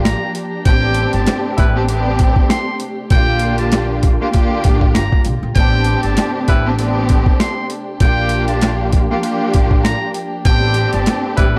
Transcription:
0.00 0.12 A1 medium
0.00 0.64 F3 medium
0.00 0.28 A#3 loud
0.00 0.64 A#3 medium
0.00 0.28 D4 medium
0.00 3.07 D4 medium
0.00 0.28 F4 medium
0.00 0.28 G4 loud
0.00 5.52 G4 medium
0.04 0.32 A#5 medium
0.04 snare loud
0.04 snare medium
0.04 closed hi-hat loud
0.35 closed hi-hat medium
0.65 1.04 A1 loud
0.65 3.09 C3 medium
0.65 3.09 A3 medium
0.65 1.65 B3 medium
0.65 1.66 C4 medium
0.65 1.66 D4 medium
0.65 1.66 G4 loud
0.65 1.11 G5 loud
0.65 kick loud
0.65 closed hi-hat medium
0.94 closed hi-hat medium
1.13 1.25 G1 loud
1.13 1.41 A5 medium
1.13 closed hi-hat medium
1.27 snare loud
1.27 snare medium
1.27 closed hi-hat loud
1.57 2.32 A1 medium
1.57 1.77 G3 medium
1.57 1.77 E4 medium
1.57 1.77 B4 loud
1.57 kick loud
1.57 closed hi-hat medium
1.74 1.86 B3 loud
1.74 1.86 C4 medium
1.74 1.87 D4 medium
1.74 1.87 G4 loud
1.87 2.73 B3 loud
1.87 2.73 C4 medium
1.87 2.74 D4 medium
1.87 2.74 G4 loud
1.87 closed hi-hat medium
2.19 kick loud
2.19 closed hi-hat medium
2.36 kick loud
2.50 2.77 C6 medium
2.50 snare loud
2.50 snare medium
2.50 closed hi-hat loud
2.80 closed hi-hat medium
3.10 4.16 A#1 loud
3.10 5.54 D3 medium
3.10 5.54 A#3 medium
3.10 4.11 A#3 loud
3.10 4.11 D4 medium
3.10 5.54 F4 medium
3.10 4.11 F4 medium
3.10 4.11 G4 loud
3.10 3.56 G5 loud
3.10 kick loud
3.10 closed hi-hat medium
3.39 closed hi-hat medium
3.58 3.86 A5 medium
3.58 closed hi-hat medium
3.72 snare loud
3.72 snare medium
3.72 closed hi-hat loud
4.03 kick loud
4.03 closed hi-hat medium
4.20 4.30 A#3 loud
4.20 4.30 D4 medium
4.20 4.31 F4 medium
4.20 4.31 G4 loud
4.31 5.17 A#3 loud
4.31 5.18 D4 medium
4.31 5.18 F4 medium
4.31 5.18 G4 loud
4.31 kick loud
4.31 closed hi-hat medium
4.64 4.89 A1 medium
4.64 kick medium
4.64 closed hi-hat medium
4.81 kick medium
4.95 5.08 G1 medium
4.95 5.22 A#5 medium
4.95 snare loud
4.95 snare medium
4.95 closed hi-hat loud
5.12 kick medium
5.25 5.39 B1 medium
5.25 closed hi-hat medium
5.43 5.53 A#1 medium
5.55 5.93 A1 loud
5.55 7.99 C3 medium
5.55 7.99 A3 medium
5.55 6.55 B3 medium
5.55 6.55 C4 medium
5.55 11.59 D4 medium
5.55 6.56 D4 medium
5.55 11.59 G4 medium
5.55 6.56 G4 loud
5.55 6.00 G5 loud
5.55 kick loud
5.55 closed hi-hat loud
5.84 closed hi-hat medium
6.03 6.15 G1 medium
6.03 6.31 A5 medium
6.03 closed hi-hat medium
6.17 snare loud
6.17 snare medium
6.17 closed hi-hat loud
6.48 7.22 A1 loud
6.48 6.68 G3 loud
6.48 6.68 E4 loud
6.48 6.68 B4 loud
6.48 kick loud
6.48 closed hi-hat medium
6.65 6.76 B3 medium
6.65 6.77 C4 medium
6.65 6.77 D4 medium
6.65 6.78 G4 loud
6.77 7.63 B3 loud
6.77 7.63 C4 medium
6.77 7.64 D4 medium
6.77 7.64 G4 loud
6.77 closed hi-hat medium
7.09 kick medium
7.09 closed hi-hat medium
7.26 kick medium
7.40 7.67 C6 medium
7.40 snare loud
7.40 snare medium
7.40 closed hi-hat loud
7.70 closed hi-hat medium
8.00 9.06 A#1 loud
8.00 10.44 F3 medium
8.00 10.43 A#3 medium
8.00 9.01 A#3 loud
8.00 9.01 D4 medium
8.00 9.01 F4 medium
8.00 9.01 G4 loud
8.00 8.46 G5 loud
8.00 kick loud
8.00 closed hi-hat loud
8.29 closed hi-hat medium
8.48 8.76 A5 medium
8.48 closed hi-hat medium
8.61 snare loud
8.61 snare medium
8.61 closed hi-hat loud
8.92 kick loud
8.92 closed hi-hat medium
9.10 9.20 A#3 loud
9.10 9.20 D4 medium
9.10 9.21 F4 medium
9.10 9.21 G4 loud
9.21 10.07 A#3 loud
9.21 10.08 D4 medium
9.21 10.08 F4 medium
9.21 10.08 G4 loud
9.21 closed hi-hat medium
9.54 9.92 A1 medium
9.54 kick medium
9.54 closed hi-hat medium
9.71 kick loud
9.84 10.12 A#5 medium
9.84 snare loud
9.84 snare medium
9.84 closed hi-hat loud
10.14 closed hi-hat medium
10.45 10.83 A1 loud
10.45 11.59 C3 medium
10.45 11.59 A3 medium
10.45 11.45 B3 medium
10.45 11.45 C4 medium
10.45 11.45 D4 medium
10.45 11.45 G4 loud
10.45 10.90 G5 loud
10.45 kick loud
10.45 closed hi-hat loud
10.74 closed hi-hat medium
10.93 11.04 G1 medium
10.93 11.21 A5 medium
10.93 closed hi-hat medium
11.06 snare loud
11.06 snare medium
11.06 closed hi-hat loud
11.37 11.59 A1 loud
11.37 11.57 G3 loud
11.37 11.57 E4 medium
11.37 11.57 B4 loud
11.37 kick loud
11.37 closed hi-hat medium
11.54 11.59 B3 medium
11.54 11.59 C4 medium
11.54 11.59 D4 medium
11.54 11.59 G4 loud

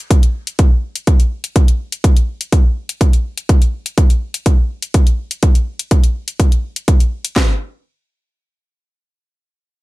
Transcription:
0.11 kick loud
0.11 closed hi-hat medium
0.23 closed hi-hat soft
0.47 closed hi-hat soft
0.59 kick loud
0.59 closed hi-hat medium
0.96 closed hi-hat soft
1.07 kick loud
1.07 closed hi-hat medium
1.20 closed hi-hat soft
1.44 closed hi-hat medium
1.56 kick loud
1.56 closed hi-hat medium
1.68 closed hi-hat soft
1.92 closed hi-hat medium
2.04 kick loud
2.04 closed hi-hat medium
2.17 closed hi-hat soft
2.41 closed hi-hat soft
2.52 kick loud
2.52 closed hi-hat medium
2.89 closed hi-hat medium
3.01 kick loud
3.01 closed hi-hat medium
3.13 closed hi-hat soft
3.38 closed hi-hat medium
3.49 kick loud
3.49 closed hi-hat medium
3.62 closed hi-hat soft
3.86 closed hi-hat medium
3.98 kick loud
3.98 closed hi-hat medium
4.10 closed hi-hat soft
4.34 closed hi-hat medium
4.46 kick loud
4.46 closed hi-hat medium
4.82 closed hi-hat medium
4.94 kick loud
4.94 closed hi-hat medium
5.07 closed hi-hat soft
5.31 closed hi-hat medium
5.43 kick loud
5.43 closed hi-hat medium
5.55 closed hi-hat soft
5.79 closed hi-hat medium
5.91 kick loud
5.91 closed hi-hat medium
6.04 closed hi-hat soft
6.28 closed hi-hat medium
6.40 kick loud
6.40 closed hi-hat medium
6.52 closed hi-hat soft
6.76 closed hi-hat medium
6.88 kick loud
6.88 closed hi-hat medium
7.00 closed hi-hat soft
7.25 closed hi-hat medium
7.36 kick loud
7.36 snare loud
7.36 clap medium

